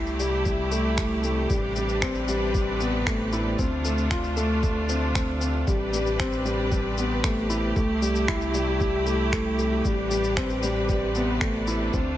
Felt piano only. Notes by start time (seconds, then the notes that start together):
Already playing: G3 A3 E4
0.19 G3
0.46 G3
0.72 A3
0.98 A3
1.24 A3
1.50 G3
1.76 G3
2.02 C4
2.29 G3
2.55 G3
2.81 B3
3.07 A3
3.33 E4
3.59 C4
3.85 A3
4.11 F4
4.37 A3
4.63 A3
4.89 C4
5.15 C4
5.41 C4
5.67 G3
5.93 G3
6.19 C4
6.45 G3
6.71 G3
6.98 B3
7.24 A3
7.50 E4
7.76 A3
8.02 G3
8.28 E4
8.54 G3
8.80 G3
9.07 A3
9.33 A3
9.59 A3
9.85 G3
10.11 G3
10.37 C4
10.63 G3
10.89 G3
11.15 B3
11.41 A3
11.68 E4
11.94 C4